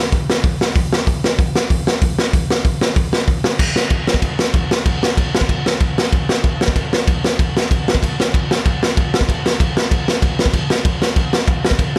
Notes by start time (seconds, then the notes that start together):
0.12 kick, open hi-hat
0.30 snare
0.44 kick, open hi-hat
0.61 snare
0.76 kick, open hi-hat
0.93 snare
1.07 kick, open hi-hat
1.24 snare
1.39 kick, open hi-hat
1.55 snare
1.70 kick, open hi-hat
1.87 snare
2.02 kick, open hi-hat
2.19 snare
2.33 kick, open hi-hat
2.50 snare
2.65 kick, open hi-hat
2.81 snare
2.96 kick, open hi-hat
3.13 snare
3.28 kick, open hi-hat
3.44 snare
3.59 kick, crash
3.76 snare
3.90 kick, crash
4.07 snare
4.14 kick
4.22 kick, crash
4.39 snare
4.54 kick, crash
4.71 snare
4.86 kick, crash
5.03 snare
5.17 kick, crash
5.35 snare
5.41 kick
5.49 kick, crash
5.66 snare
5.80 kick, crash
5.98 snare
6.13 kick, crash
6.29 snare
6.44 kick, crash
6.61 snare
6.68 kick
6.76 kick, crash
6.93 snare
7.08 kick, crash
7.24 snare
7.39 kick, crash
7.57 snare
7.71 kick, crash
7.88 snare
7.95 kick
8.03 kick, crash
8.20 snare
8.34 kick, crash
8.51 snare
8.65 kick, crash
8.83 snare
8.97 kick, crash
9.14 snare
9.21 kick
9.29 kick, crash
9.46 snare
9.60 kick, crash
9.77 snare
9.91 kick, crash
10.08 snare
10.22 kick, crash
10.39 snare
10.46 kick
10.53 kick, crash
10.70 snare
10.85 kick, crash
11.02 snare
11.16 kick, crash
11.33 snare
11.48 kick, crash
11.65 snare
11.71 kick
11.79 kick, crash